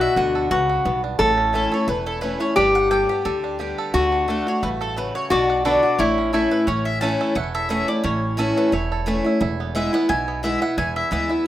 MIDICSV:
0, 0, Header, 1, 6, 480
1, 0, Start_track
1, 0, Tempo, 342075
1, 1680, Time_signature, 4, 2, 24, 8
1, 16095, End_track
2, 0, Start_track
2, 0, Title_t, "Mandolin"
2, 0, Program_c, 0, 25
2, 15, Note_on_c, 0, 76, 100
2, 237, Note_off_c, 0, 76, 0
2, 243, Note_on_c, 0, 78, 96
2, 1404, Note_off_c, 0, 78, 0
2, 2180, Note_on_c, 0, 69, 86
2, 2431, Note_off_c, 0, 69, 0
2, 2437, Note_on_c, 0, 73, 79
2, 2644, Note_off_c, 0, 73, 0
2, 2650, Note_on_c, 0, 71, 83
2, 2894, Note_off_c, 0, 71, 0
2, 2899, Note_on_c, 0, 69, 87
2, 3098, Note_off_c, 0, 69, 0
2, 3103, Note_on_c, 0, 71, 85
2, 3353, Note_off_c, 0, 71, 0
2, 3373, Note_on_c, 0, 73, 92
2, 3583, Note_off_c, 0, 73, 0
2, 3590, Note_on_c, 0, 74, 88
2, 3836, Note_off_c, 0, 74, 0
2, 3860, Note_on_c, 0, 78, 93
2, 4075, Note_off_c, 0, 78, 0
2, 4081, Note_on_c, 0, 79, 101
2, 5246, Note_off_c, 0, 79, 0
2, 6033, Note_on_c, 0, 69, 81
2, 6261, Note_off_c, 0, 69, 0
2, 6289, Note_on_c, 0, 73, 88
2, 6485, Note_off_c, 0, 73, 0
2, 6495, Note_on_c, 0, 71, 87
2, 6566, Note_off_c, 0, 71, 0
2, 6756, Note_on_c, 0, 69, 82
2, 6973, Note_off_c, 0, 69, 0
2, 6979, Note_on_c, 0, 71, 89
2, 7214, Note_off_c, 0, 71, 0
2, 7228, Note_on_c, 0, 73, 96
2, 7434, Note_off_c, 0, 73, 0
2, 7456, Note_on_c, 0, 74, 104
2, 7922, Note_off_c, 0, 74, 0
2, 7928, Note_on_c, 0, 71, 88
2, 8375, Note_off_c, 0, 71, 0
2, 8398, Note_on_c, 0, 73, 89
2, 9090, Note_off_c, 0, 73, 0
2, 9139, Note_on_c, 0, 71, 83
2, 9349, Note_off_c, 0, 71, 0
2, 9359, Note_on_c, 0, 73, 96
2, 9616, Note_on_c, 0, 76, 94
2, 9631, Note_off_c, 0, 73, 0
2, 9829, Note_off_c, 0, 76, 0
2, 9834, Note_on_c, 0, 81, 106
2, 10288, Note_off_c, 0, 81, 0
2, 10323, Note_on_c, 0, 78, 99
2, 10583, Note_off_c, 0, 78, 0
2, 10589, Note_on_c, 0, 76, 98
2, 10791, Note_off_c, 0, 76, 0
2, 10808, Note_on_c, 0, 76, 92
2, 11048, Note_off_c, 0, 76, 0
2, 11059, Note_on_c, 0, 74, 92
2, 11269, Note_off_c, 0, 74, 0
2, 11286, Note_on_c, 0, 73, 85
2, 12028, Note_off_c, 0, 73, 0
2, 12034, Note_on_c, 0, 71, 91
2, 12245, Note_off_c, 0, 71, 0
2, 12251, Note_on_c, 0, 73, 80
2, 12934, Note_off_c, 0, 73, 0
2, 13687, Note_on_c, 0, 76, 91
2, 13925, Note_off_c, 0, 76, 0
2, 13947, Note_on_c, 0, 78, 104
2, 14156, Note_off_c, 0, 78, 0
2, 14162, Note_on_c, 0, 80, 109
2, 14608, Note_off_c, 0, 80, 0
2, 14645, Note_on_c, 0, 76, 92
2, 14883, Note_off_c, 0, 76, 0
2, 14900, Note_on_c, 0, 78, 95
2, 15106, Note_off_c, 0, 78, 0
2, 15123, Note_on_c, 0, 80, 101
2, 15361, Note_off_c, 0, 80, 0
2, 15381, Note_on_c, 0, 76, 87
2, 15589, Note_off_c, 0, 76, 0
2, 15606, Note_on_c, 0, 76, 80
2, 16048, Note_off_c, 0, 76, 0
2, 16095, End_track
3, 0, Start_track
3, 0, Title_t, "Resonator guitar played with a steel bar"
3, 0, Program_c, 1, 25
3, 0, Note_on_c, 1, 66, 102
3, 698, Note_off_c, 1, 66, 0
3, 715, Note_on_c, 1, 66, 96
3, 1404, Note_off_c, 1, 66, 0
3, 1667, Note_on_c, 1, 69, 99
3, 3583, Note_off_c, 1, 69, 0
3, 3589, Note_on_c, 1, 67, 91
3, 5519, Note_off_c, 1, 67, 0
3, 5525, Note_on_c, 1, 66, 88
3, 7392, Note_off_c, 1, 66, 0
3, 7440, Note_on_c, 1, 66, 91
3, 7927, Note_off_c, 1, 66, 0
3, 7933, Note_on_c, 1, 62, 72
3, 8414, Note_on_c, 1, 64, 86
3, 8426, Note_off_c, 1, 62, 0
3, 8858, Note_off_c, 1, 64, 0
3, 8895, Note_on_c, 1, 64, 72
3, 9339, Note_off_c, 1, 64, 0
3, 16095, End_track
4, 0, Start_track
4, 0, Title_t, "Five-string banjo"
4, 0, Program_c, 2, 105
4, 0, Note_on_c, 2, 59, 75
4, 12, Note_on_c, 2, 62, 60
4, 234, Note_on_c, 2, 66, 57
4, 445, Note_off_c, 2, 59, 0
4, 493, Note_on_c, 2, 69, 58
4, 672, Note_off_c, 2, 62, 0
4, 715, Note_on_c, 2, 59, 66
4, 923, Note_off_c, 2, 66, 0
4, 974, Note_on_c, 2, 66, 57
4, 1153, Note_off_c, 2, 69, 0
4, 1183, Note_off_c, 2, 59, 0
4, 1200, Note_on_c, 2, 59, 70
4, 1457, Note_on_c, 2, 62, 53
4, 1634, Note_off_c, 2, 66, 0
4, 1666, Note_off_c, 2, 59, 0
4, 1672, Note_on_c, 2, 57, 76
4, 1679, Note_off_c, 2, 62, 0
4, 1932, Note_on_c, 2, 61, 56
4, 2157, Note_on_c, 2, 64, 56
4, 2364, Note_off_c, 2, 57, 0
4, 2413, Note_on_c, 2, 69, 57
4, 2594, Note_off_c, 2, 61, 0
4, 2634, Note_on_c, 2, 57, 63
4, 2846, Note_off_c, 2, 64, 0
4, 2894, Note_on_c, 2, 64, 61
4, 3075, Note_off_c, 2, 69, 0
4, 3097, Note_off_c, 2, 57, 0
4, 3114, Note_on_c, 2, 57, 67
4, 3379, Note_on_c, 2, 61, 54
4, 3556, Note_off_c, 2, 64, 0
4, 3596, Note_off_c, 2, 61, 0
4, 3599, Note_off_c, 2, 57, 0
4, 3602, Note_on_c, 2, 62, 66
4, 4082, Note_on_c, 2, 69, 60
4, 4341, Note_on_c, 2, 67, 62
4, 4547, Note_off_c, 2, 69, 0
4, 4564, Note_on_c, 2, 69, 62
4, 4818, Note_off_c, 2, 62, 0
4, 4824, Note_on_c, 2, 62, 61
4, 5000, Note_off_c, 2, 67, 0
4, 5048, Note_on_c, 2, 67, 60
4, 5252, Note_off_c, 2, 69, 0
4, 5309, Note_on_c, 2, 69, 59
4, 5527, Note_off_c, 2, 67, 0
4, 5527, Note_on_c, 2, 57, 78
4, 5528, Note_off_c, 2, 69, 0
4, 5777, Note_off_c, 2, 62, 0
4, 5783, Note_on_c, 2, 62, 60
4, 5992, Note_off_c, 2, 57, 0
4, 6009, Note_on_c, 2, 57, 61
4, 6266, Note_on_c, 2, 66, 60
4, 6442, Note_off_c, 2, 62, 0
4, 6476, Note_off_c, 2, 57, 0
4, 6493, Note_on_c, 2, 57, 68
4, 6745, Note_on_c, 2, 69, 61
4, 6924, Note_off_c, 2, 66, 0
4, 6950, Note_off_c, 2, 57, 0
4, 6967, Note_on_c, 2, 57, 67
4, 7225, Note_on_c, 2, 66, 53
4, 7404, Note_off_c, 2, 69, 0
4, 7448, Note_off_c, 2, 57, 0
4, 7448, Note_off_c, 2, 66, 0
4, 7449, Note_on_c, 2, 62, 68
4, 7713, Note_on_c, 2, 66, 61
4, 7932, Note_on_c, 2, 69, 64
4, 8136, Note_off_c, 2, 62, 0
4, 8171, Note_off_c, 2, 66, 0
4, 8187, Note_on_c, 2, 66, 61
4, 8410, Note_off_c, 2, 66, 0
4, 8411, Note_off_c, 2, 69, 0
4, 8417, Note_on_c, 2, 64, 65
4, 8670, Note_on_c, 2, 61, 61
4, 8885, Note_on_c, 2, 69, 58
4, 9100, Note_off_c, 2, 64, 0
4, 9143, Note_on_c, 2, 64, 54
4, 9327, Note_off_c, 2, 61, 0
4, 9367, Note_off_c, 2, 64, 0
4, 9368, Note_off_c, 2, 69, 0
4, 9369, Note_on_c, 2, 61, 69
4, 9852, Note_on_c, 2, 69, 60
4, 10114, Note_on_c, 2, 57, 79
4, 10336, Note_on_c, 2, 64, 66
4, 10537, Note_off_c, 2, 69, 0
4, 10590, Note_on_c, 2, 69, 61
4, 10768, Note_off_c, 2, 57, 0
4, 10813, Note_on_c, 2, 57, 72
4, 11062, Note_off_c, 2, 64, 0
4, 11067, Note_on_c, 2, 64, 58
4, 11246, Note_off_c, 2, 69, 0
4, 11282, Note_off_c, 2, 61, 0
4, 11288, Note_on_c, 2, 61, 67
4, 11497, Note_off_c, 2, 57, 0
4, 11767, Note_on_c, 2, 69, 59
4, 11974, Note_off_c, 2, 61, 0
4, 12028, Note_on_c, 2, 57, 76
4, 12249, Note_off_c, 2, 64, 0
4, 12255, Note_on_c, 2, 64, 67
4, 12453, Note_off_c, 2, 69, 0
4, 12512, Note_on_c, 2, 69, 61
4, 12683, Note_off_c, 2, 57, 0
4, 12735, Note_on_c, 2, 57, 68
4, 12990, Note_off_c, 2, 64, 0
4, 12996, Note_on_c, 2, 64, 59
4, 13165, Note_off_c, 2, 69, 0
4, 13208, Note_off_c, 2, 64, 0
4, 13210, Note_off_c, 2, 57, 0
4, 13214, Note_on_c, 2, 64, 73
4, 13472, Note_on_c, 2, 59, 63
4, 13688, Note_off_c, 2, 64, 0
4, 13694, Note_on_c, 2, 64, 61
4, 13939, Note_off_c, 2, 59, 0
4, 13945, Note_on_c, 2, 59, 76
4, 14160, Note_off_c, 2, 64, 0
4, 14166, Note_on_c, 2, 64, 68
4, 14406, Note_off_c, 2, 59, 0
4, 14423, Note_on_c, 2, 59, 65
4, 14641, Note_off_c, 2, 64, 0
4, 14647, Note_on_c, 2, 64, 64
4, 14895, Note_off_c, 2, 64, 0
4, 14900, Note_on_c, 2, 64, 62
4, 15078, Note_off_c, 2, 59, 0
4, 15122, Note_off_c, 2, 64, 0
4, 15128, Note_on_c, 2, 64, 64
4, 15383, Note_off_c, 2, 64, 0
4, 15383, Note_on_c, 2, 64, 64
4, 15600, Note_on_c, 2, 59, 59
4, 15857, Note_off_c, 2, 64, 0
4, 15863, Note_on_c, 2, 64, 64
4, 16095, Note_off_c, 2, 59, 0
4, 16095, Note_off_c, 2, 64, 0
4, 16095, End_track
5, 0, Start_track
5, 0, Title_t, "Steel-string acoustic guitar"
5, 0, Program_c, 3, 25
5, 0, Note_on_c, 3, 47, 94
5, 228, Note_on_c, 3, 50, 67
5, 237, Note_on_c, 3, 59, 58
5, 247, Note_on_c, 3, 62, 68
5, 260, Note_on_c, 3, 66, 67
5, 671, Note_off_c, 3, 47, 0
5, 691, Note_off_c, 3, 50, 0
5, 696, Note_off_c, 3, 59, 0
5, 701, Note_off_c, 3, 62, 0
5, 707, Note_off_c, 3, 66, 0
5, 715, Note_on_c, 3, 49, 79
5, 1176, Note_off_c, 3, 49, 0
5, 1198, Note_on_c, 3, 43, 83
5, 1657, Note_off_c, 3, 43, 0
5, 1679, Note_on_c, 3, 45, 92
5, 2145, Note_on_c, 3, 52, 60
5, 2159, Note_on_c, 3, 57, 68
5, 2170, Note_on_c, 3, 61, 74
5, 2178, Note_on_c, 3, 64, 68
5, 2390, Note_off_c, 3, 64, 0
5, 2401, Note_off_c, 3, 52, 0
5, 2407, Note_on_c, 3, 64, 66
5, 2408, Note_off_c, 3, 57, 0
5, 2414, Note_off_c, 3, 61, 0
5, 2437, Note_on_c, 3, 61, 51
5, 2597, Note_off_c, 3, 45, 0
5, 2626, Note_off_c, 3, 64, 0
5, 2634, Note_on_c, 3, 40, 92
5, 2641, Note_off_c, 3, 61, 0
5, 3111, Note_on_c, 3, 52, 61
5, 3124, Note_on_c, 3, 57, 57
5, 3133, Note_on_c, 3, 61, 60
5, 3142, Note_on_c, 3, 64, 61
5, 3347, Note_off_c, 3, 64, 0
5, 3363, Note_on_c, 3, 64, 55
5, 3365, Note_off_c, 3, 52, 0
5, 3371, Note_off_c, 3, 57, 0
5, 3376, Note_off_c, 3, 61, 0
5, 3396, Note_on_c, 3, 61, 45
5, 3554, Note_off_c, 3, 40, 0
5, 3585, Note_off_c, 3, 64, 0
5, 3599, Note_on_c, 3, 43, 96
5, 3602, Note_off_c, 3, 61, 0
5, 4081, Note_on_c, 3, 50, 63
5, 4091, Note_on_c, 3, 55, 60
5, 4102, Note_on_c, 3, 59, 61
5, 4113, Note_on_c, 3, 67, 69
5, 4320, Note_off_c, 3, 67, 0
5, 4330, Note_off_c, 3, 50, 0
5, 4336, Note_off_c, 3, 55, 0
5, 4337, Note_on_c, 3, 67, 62
5, 4341, Note_off_c, 3, 59, 0
5, 4369, Note_on_c, 3, 59, 52
5, 4518, Note_off_c, 3, 43, 0
5, 4553, Note_off_c, 3, 67, 0
5, 4562, Note_on_c, 3, 50, 91
5, 4569, Note_off_c, 3, 59, 0
5, 5018, Note_off_c, 3, 50, 0
5, 5035, Note_on_c, 3, 50, 58
5, 5046, Note_on_c, 3, 55, 55
5, 5059, Note_on_c, 3, 59, 65
5, 5066, Note_on_c, 3, 67, 68
5, 5499, Note_off_c, 3, 50, 0
5, 5504, Note_off_c, 3, 55, 0
5, 5511, Note_off_c, 3, 59, 0
5, 5514, Note_off_c, 3, 67, 0
5, 5532, Note_on_c, 3, 50, 93
5, 5985, Note_off_c, 3, 50, 0
5, 6002, Note_on_c, 3, 50, 69
5, 6017, Note_on_c, 3, 57, 61
5, 6031, Note_on_c, 3, 62, 65
5, 6036, Note_on_c, 3, 66, 67
5, 6253, Note_off_c, 3, 50, 0
5, 6254, Note_off_c, 3, 66, 0
5, 6260, Note_off_c, 3, 57, 0
5, 6267, Note_off_c, 3, 62, 0
5, 6270, Note_on_c, 3, 66, 59
5, 6305, Note_on_c, 3, 62, 54
5, 6481, Note_off_c, 3, 66, 0
5, 6499, Note_off_c, 3, 62, 0
5, 6501, Note_on_c, 3, 43, 81
5, 6953, Note_off_c, 3, 43, 0
5, 6985, Note_on_c, 3, 49, 85
5, 7435, Note_off_c, 3, 49, 0
5, 7457, Note_on_c, 3, 47, 96
5, 7929, Note_on_c, 3, 50, 63
5, 7944, Note_on_c, 3, 59, 61
5, 7950, Note_on_c, 3, 62, 65
5, 7960, Note_on_c, 3, 66, 76
5, 8159, Note_off_c, 3, 66, 0
5, 8176, Note_on_c, 3, 66, 62
5, 8177, Note_off_c, 3, 50, 0
5, 8185, Note_off_c, 3, 59, 0
5, 8188, Note_off_c, 3, 62, 0
5, 8212, Note_on_c, 3, 62, 49
5, 8369, Note_off_c, 3, 47, 0
5, 8395, Note_off_c, 3, 66, 0
5, 8406, Note_on_c, 3, 45, 94
5, 8413, Note_off_c, 3, 62, 0
5, 8879, Note_on_c, 3, 52, 58
5, 8890, Note_on_c, 3, 57, 66
5, 8901, Note_on_c, 3, 61, 66
5, 8910, Note_on_c, 3, 64, 63
5, 9324, Note_off_c, 3, 45, 0
5, 9342, Note_off_c, 3, 52, 0
5, 9348, Note_off_c, 3, 57, 0
5, 9354, Note_off_c, 3, 61, 0
5, 9358, Note_off_c, 3, 64, 0
5, 9371, Note_on_c, 3, 45, 95
5, 9837, Note_on_c, 3, 52, 95
5, 9851, Note_on_c, 3, 57, 89
5, 9858, Note_on_c, 3, 61, 96
5, 9868, Note_on_c, 3, 64, 104
5, 10286, Note_off_c, 3, 45, 0
5, 10301, Note_off_c, 3, 52, 0
5, 10308, Note_off_c, 3, 57, 0
5, 10311, Note_off_c, 3, 61, 0
5, 10316, Note_off_c, 3, 64, 0
5, 10318, Note_on_c, 3, 40, 88
5, 10790, Note_on_c, 3, 52, 84
5, 10805, Note_on_c, 3, 57, 91
5, 10812, Note_on_c, 3, 61, 95
5, 10823, Note_on_c, 3, 64, 91
5, 11039, Note_off_c, 3, 64, 0
5, 11047, Note_off_c, 3, 52, 0
5, 11055, Note_off_c, 3, 57, 0
5, 11056, Note_on_c, 3, 64, 58
5, 11058, Note_off_c, 3, 61, 0
5, 11087, Note_on_c, 3, 61, 50
5, 11238, Note_off_c, 3, 40, 0
5, 11274, Note_off_c, 3, 64, 0
5, 11275, Note_on_c, 3, 45, 97
5, 11290, Note_off_c, 3, 61, 0
5, 11746, Note_on_c, 3, 52, 90
5, 11757, Note_on_c, 3, 57, 95
5, 11766, Note_on_c, 3, 61, 109
5, 11777, Note_on_c, 3, 64, 113
5, 12196, Note_off_c, 3, 45, 0
5, 12214, Note_off_c, 3, 52, 0
5, 12219, Note_off_c, 3, 57, 0
5, 12224, Note_off_c, 3, 61, 0
5, 12230, Note_off_c, 3, 64, 0
5, 12239, Note_on_c, 3, 40, 84
5, 12712, Note_on_c, 3, 52, 90
5, 12723, Note_on_c, 3, 57, 95
5, 12735, Note_on_c, 3, 61, 93
5, 12742, Note_on_c, 3, 64, 92
5, 12953, Note_off_c, 3, 64, 0
5, 12967, Note_off_c, 3, 52, 0
5, 12970, Note_on_c, 3, 64, 61
5, 12972, Note_off_c, 3, 57, 0
5, 12978, Note_off_c, 3, 61, 0
5, 12999, Note_on_c, 3, 61, 53
5, 13157, Note_off_c, 3, 40, 0
5, 13190, Note_off_c, 3, 64, 0
5, 13197, Note_on_c, 3, 40, 97
5, 13204, Note_off_c, 3, 61, 0
5, 13677, Note_on_c, 3, 52, 100
5, 13687, Note_on_c, 3, 56, 100
5, 13695, Note_on_c, 3, 59, 100
5, 13705, Note_on_c, 3, 64, 106
5, 13914, Note_off_c, 3, 64, 0
5, 13928, Note_off_c, 3, 52, 0
5, 13931, Note_on_c, 3, 64, 67
5, 13933, Note_off_c, 3, 56, 0
5, 13937, Note_off_c, 3, 59, 0
5, 13963, Note_on_c, 3, 59, 52
5, 14115, Note_off_c, 3, 40, 0
5, 14149, Note_off_c, 3, 64, 0
5, 14157, Note_on_c, 3, 47, 91
5, 14165, Note_off_c, 3, 59, 0
5, 14633, Note_on_c, 3, 52, 85
5, 14649, Note_on_c, 3, 56, 92
5, 14659, Note_on_c, 3, 59, 94
5, 14669, Note_on_c, 3, 64, 90
5, 14873, Note_off_c, 3, 64, 0
5, 14885, Note_off_c, 3, 52, 0
5, 14890, Note_on_c, 3, 64, 59
5, 14893, Note_off_c, 3, 56, 0
5, 14898, Note_off_c, 3, 59, 0
5, 14920, Note_on_c, 3, 59, 50
5, 15073, Note_off_c, 3, 47, 0
5, 15107, Note_off_c, 3, 64, 0
5, 15122, Note_off_c, 3, 59, 0
5, 15124, Note_on_c, 3, 40, 102
5, 15588, Note_on_c, 3, 52, 86
5, 15599, Note_on_c, 3, 56, 98
5, 15609, Note_on_c, 3, 59, 94
5, 15617, Note_on_c, 3, 64, 102
5, 15830, Note_off_c, 3, 64, 0
5, 15841, Note_off_c, 3, 52, 0
5, 15847, Note_off_c, 3, 56, 0
5, 15847, Note_on_c, 3, 64, 64
5, 15852, Note_off_c, 3, 59, 0
5, 15878, Note_on_c, 3, 59, 51
5, 16036, Note_off_c, 3, 40, 0
5, 16065, Note_off_c, 3, 64, 0
5, 16080, Note_off_c, 3, 59, 0
5, 16095, End_track
6, 0, Start_track
6, 0, Title_t, "Upright bass"
6, 0, Program_c, 4, 32
6, 229, Note_on_c, 4, 38, 86
6, 642, Note_off_c, 4, 38, 0
6, 715, Note_on_c, 4, 37, 79
6, 1125, Note_off_c, 4, 37, 0
6, 1198, Note_on_c, 4, 35, 80
6, 1607, Note_off_c, 4, 35, 0
6, 1674, Note_on_c, 4, 33, 93
6, 2326, Note_off_c, 4, 33, 0
6, 2632, Note_on_c, 4, 28, 84
6, 3285, Note_off_c, 4, 28, 0
6, 3605, Note_on_c, 4, 31, 87
6, 4254, Note_off_c, 4, 31, 0
6, 4569, Note_on_c, 4, 38, 74
6, 5218, Note_off_c, 4, 38, 0
6, 5530, Note_on_c, 4, 38, 94
6, 6178, Note_off_c, 4, 38, 0
6, 6493, Note_on_c, 4, 33, 80
6, 7141, Note_off_c, 4, 33, 0
6, 7445, Note_on_c, 4, 35, 89
6, 8096, Note_off_c, 4, 35, 0
6, 8403, Note_on_c, 4, 33, 91
6, 9054, Note_off_c, 4, 33, 0
6, 9365, Note_on_c, 4, 33, 95
6, 10015, Note_off_c, 4, 33, 0
6, 10324, Note_on_c, 4, 28, 80
6, 10974, Note_off_c, 4, 28, 0
6, 11286, Note_on_c, 4, 33, 99
6, 11934, Note_off_c, 4, 33, 0
6, 12243, Note_on_c, 4, 28, 82
6, 12892, Note_off_c, 4, 28, 0
6, 13204, Note_on_c, 4, 28, 100
6, 13852, Note_off_c, 4, 28, 0
6, 14167, Note_on_c, 4, 35, 84
6, 14813, Note_off_c, 4, 35, 0
6, 15119, Note_on_c, 4, 28, 90
6, 15444, Note_off_c, 4, 28, 0
6, 15598, Note_on_c, 4, 38, 89
6, 16006, Note_off_c, 4, 38, 0
6, 16095, End_track
0, 0, End_of_file